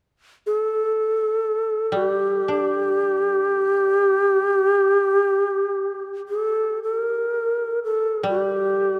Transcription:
0.46 1.98 A4 medium
1.92 5.13 G3 soft
1.96 6.04 G4 medium
2.48 4.61 D4 soft
6.29 6.80 A4 medium
6.83 6.97 A4 medium
6.97 7.79 A#4 medium
7.84 8.25 A4 medium
8.23 9.00 G3 soft
8.29 9.00 G4 medium

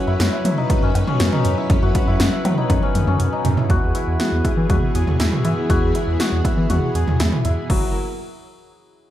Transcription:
0.00 3.66 F#3 medium
0.00 0.82 C#4 medium
0.00 3.66 C#4 medium
0.00 1.82 F#4 medium
0.00 3.66 B4 medium
0.07 0.17 F#2 loud
0.07 0.32 E4 medium
0.20 0.29 F#2 loud
0.20 snare loud
0.20 closed hi-hat medium
0.33 0.64 E4 medium
0.45 0.54 F#3 loud
0.45 closed hi-hat medium
0.45 mid tom loud
0.58 1.32 D#4 medium
0.70 kick loud
0.70 closed hi-hat medium
0.82 0.92 F#2 loud
0.82 1.07 C#4 medium
0.95 1.04 F#2 loud
0.95 closed hi-hat medium
0.95 cowbell medium
1.07 2.82 C#4 medium
1.07 mid tom loud
1.20 1.29 F#2 loud
1.20 snare loud
1.20 closed hi-hat medium
1.32 1.63 D#4 medium
1.32 mid tom loud
1.45 1.54 F#2 loud
1.45 closed hi-hat medium
1.57 2.07 E4 medium
1.70 1.79 F#2 loud
1.70 kick loud
1.70 closed hi-hat medium
1.82 1.92 F#2 loud
1.82 3.70 F#4 medium
1.95 kick loud
1.95 closed hi-hat medium
2.07 2.17 F#2 loud
2.07 2.32 E4 medium
2.20 2.29 F#2 loud
2.20 snare loud
2.20 closed hi-hat medium
2.32 2.63 E4 medium
2.45 2.54 F#3 loud
2.45 closed hi-hat medium
2.45 mid tom loud
2.45 cowbell medium
2.57 3.32 D#4 medium
2.70 2.79 F#2 loud
2.70 kick loud
2.70 closed hi-hat medium
2.70 high tom medium
2.83 3.07 C#4 medium
2.95 3.04 F#2 loud
2.95 closed hi-hat medium
2.95 mid tom medium
3.07 3.17 F#2 loud
3.07 6.94 C#4 medium
3.07 mid tom medium
3.20 3.29 F#2 loud
3.20 closed hi-hat medium
3.32 3.63 D#4 medium
3.45 3.54 F#2 loud
3.45 closed hi-hat medium
3.45 floor tom loud
3.57 3.94 E4 medium
3.57 floor tom loud
3.70 3.79 E2 loud
3.70 7.66 E3 medium
3.70 7.66 B3 medium
3.70 4.19 F#4 medium
3.70 7.66 G#4 medium
3.70 kick loud
3.70 closed hi-hat medium
3.82 3.92 E2 loud
3.95 4.44 E4 medium
3.95 closed hi-hat medium
4.07 4.17 E2 loud
4.20 4.69 F#4 medium
4.20 snare medium
4.20 closed hi-hat medium
4.32 4.42 E2 medium
4.45 5.19 E4 medium
4.45 kick medium
4.45 closed hi-hat medium
4.57 4.67 E3 loud
4.70 4.79 E2 loud
4.70 5.69 F#4 medium
4.70 kick loud
4.70 closed hi-hat medium
4.70 mid tom loud
4.95 5.04 E2 loud
4.95 6.94 G#4 medium
4.95 closed hi-hat medium
5.07 5.17 E2 loud
5.07 mid tom medium
5.20 5.29 E2 loud
5.20 5.44 E4 medium
5.20 snare loud
5.20 closed hi-hat medium
5.32 mid tom loud
5.45 5.54 E3 loud
5.45 5.94 E4 medium
5.45 closed hi-hat medium
5.70 5.79 E2 loud
5.70 5.90 F#4 loud
5.70 kick loud
5.70 closed hi-hat medium
5.82 5.92 E2 loud
5.95 6.15 E4 medium
5.95 closed hi-hat medium
6.07 6.17 E2 medium
6.20 6.40 F#4 medium
6.20 snare loud
6.20 closed hi-hat medium
6.32 6.42 E2 loud
6.45 6.65 E4 medium
6.45 kick medium
6.45 closed hi-hat medium
6.57 6.67 E3 loud
6.70 6.79 E2 loud
6.70 6.90 F#4 medium
6.70 closed hi-hat medium
6.70 mid tom loud
6.95 7.04 E2 loud
6.95 7.15 G#4 medium
6.95 closed hi-hat medium
7.07 7.17 E2 medium
7.07 mid tom loud
7.20 7.29 E2 loud
7.20 7.40 E4 medium
7.20 snare loud
7.20 closed hi-hat medium
7.32 mid tom loud
7.45 7.54 E2 loud
7.45 7.65 E4 medium
7.45 closed hi-hat medium
7.70 7.93 F#1 loud
7.70 7.93 F#3 medium
7.70 7.93 E4 medium
7.70 7.93 A#4 medium
7.70 kick loud
7.70 crash medium

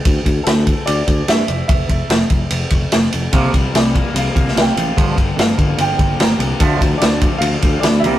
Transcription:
0.05 0.19 D2 medium
0.05 kick loud
0.05 ride medium
0.25 0.39 D2 medium
0.25 kick medium
0.25 ride medium
0.44 0.73 D2 medium
0.44 0.87 A4 medium
0.44 snare loud
0.44 ride medium
0.67 kick medium
0.67 ride medium
0.86 1.01 D2 medium
0.86 1.29 D5 loud
0.86 ride medium
1.08 1.21 D2 medium
1.08 kick medium
1.08 ride medium
1.28 1.41 G2 medium
1.28 1.66 E5 loud
1.28 snare loud
1.28 ride medium
1.48 1.62 F1 medium
1.48 ride medium
1.68 1.82 F1 medium
1.68 2.26 E5 medium
1.68 kick loud
1.68 ride medium
1.89 2.02 F1 medium
1.89 kick medium
1.89 ride medium
2.10 2.23 F1 medium
2.10 snare loud
2.10 ride medium
2.30 2.44 F1 medium
2.30 kick medium
2.30 ride medium
2.50 2.64 F1 medium
2.50 ride medium
2.70 2.84 F1 medium
2.70 kick medium
2.70 ride medium
2.92 3.06 F1 medium
2.92 snare loud
2.92 ride medium
3.12 3.27 F1 medium
3.12 ride medium
3.33 3.46 C2 medium
3.33 4.36 C3 medium
3.33 3.53 C3 medium
3.33 3.53 F3 medium
3.33 3.53 A#3 medium
3.33 4.96 C4 medium
3.33 8.01 F4 medium
3.33 4.96 G4 medium
3.33 4.96 A#4 medium
3.33 6.58 F5 medium
3.33 kick medium
3.33 ride medium
3.54 3.67 C2 medium
3.54 3.73 C3 medium
3.54 3.73 F3 medium
3.54 3.73 G3 medium
3.54 kick medium
3.54 ride medium
3.74 4.00 C2 medium
3.74 3.93 C3 medium
3.74 3.93 F3 medium
3.74 4.14 G3 medium
3.74 4.18 D5 medium
3.74 snare loud
3.74 ride medium
3.94 4.14 C3 medium
3.94 4.14 F3 medium
3.94 4.34 A#3 medium
3.94 kick medium
3.94 ride medium
4.14 4.28 C2 medium
4.14 4.34 C3 medium
4.14 4.34 F3 medium
4.14 4.97 G3 medium
4.14 4.59 F5 medium
4.14 ride medium
4.35 4.49 C2 medium
4.35 4.54 C3 medium
4.35 4.55 F3 medium
4.35 4.97 A#3 medium
4.35 kick medium
4.35 ride medium
4.48 snare soft
4.55 4.69 C2 medium
4.55 4.74 C3 medium
4.55 4.75 F3 medium
4.55 4.98 G4 medium
4.55 snare loud
4.55 ride medium
4.61 4.97 G5 medium
4.76 4.90 A1 medium
4.76 4.95 C3 medium
4.76 4.95 F3 medium
4.76 5.02 F4 medium
4.76 ride medium
4.97 5.10 G1 medium
4.97 5.15 G2 medium
4.97 6.01 G2 medium
4.97 5.15 D3 medium
4.97 5.17 F3 loud
4.97 8.02 D4 medium
4.97 6.60 G4 medium
4.97 6.60 A#4 medium
4.97 kick loud
4.97 ride medium
5.16 5.31 G1 medium
5.16 5.36 G2 medium
5.16 5.36 D3 medium
5.16 6.21 D3 medium
5.16 kick medium
5.16 ride medium
5.37 5.52 G1 medium
5.37 5.56 G2 medium
5.37 5.56 D3 medium
5.37 5.78 F3 medium
5.37 5.81 F5 medium
5.37 snare loud
5.37 ride medium
5.58 5.72 G1 medium
5.58 5.77 G2 medium
5.58 5.77 D3 medium
5.58 6.00 A#3 medium
5.58 kick medium
5.58 ride medium
5.78 5.92 G1 medium
5.78 5.97 G2 medium
5.78 5.97 D3 medium
5.78 6.62 F3 medium
5.78 6.22 G5 medium
5.78 ride medium
5.99 6.12 G1 medium
5.99 6.18 G2 medium
5.99 6.18 D3 medium
5.99 6.62 A#3 medium
5.99 kick medium
5.99 ride medium
6.20 6.33 G1 medium
6.20 6.38 G2 medium
6.20 6.39 D3 medium
6.20 6.62 G4 medium
6.20 6.60 A#5 medium
6.20 snare loud
6.20 ride medium
6.39 6.52 C2 medium
6.39 6.59 G2 medium
6.39 6.59 D3 medium
6.39 6.62 D4 medium
6.39 ride medium
6.60 6.74 D2 medium
6.60 6.80 D3 medium
6.60 7.64 D3 medium
6.60 6.80 F3 medium
6.60 6.81 A3 loud
6.60 8.04 A4 medium
6.60 8.04 F5 medium
6.60 kick loud
6.60 ride medium
6.81 6.94 D2 medium
6.81 7.01 D3 medium
6.81 7.01 F3 medium
6.81 kick medium
6.81 ride medium
6.98 7.28 D2 medium
6.98 7.38 D5 medium
6.98 ride medium
7.02 7.20 D3 medium
7.02 7.40 F3 medium
7.02 7.21 F3 medium
7.02 snare loud
7.21 7.41 D3 medium
7.21 7.41 F3 medium
7.21 7.62 A3 medium
7.21 kick medium
7.21 ride medium
7.38 7.55 D2 medium
7.38 8.04 F3 medium
7.38 7.83 F5 loud
7.38 ride medium
7.43 7.62 D3 medium
7.43 7.62 F3 medium
7.62 7.76 D2 medium
7.62 7.83 D3 medium
7.62 7.83 F3 medium
7.62 8.04 A3 medium
7.62 kick medium
7.62 ride medium
7.80 8.05 D2 medium
7.80 8.04 E4 medium
7.80 8.03 D5 medium
7.80 snare loud
7.80 ride medium
7.86 8.04 D3 medium
7.86 8.04 F3 medium
8.00 8.17 C2 medium
8.00 8.19 C3 medium
8.00 8.19 C4 medium
8.00 8.19 G4 medium
8.00 8.19 A#4 medium
8.00 8.19 E5 loud
8.04 8.19 C3 medium
8.04 8.19 G3 medium
8.04 8.19 A#3 medium
8.04 8.19 E5 medium
8.04 ride medium

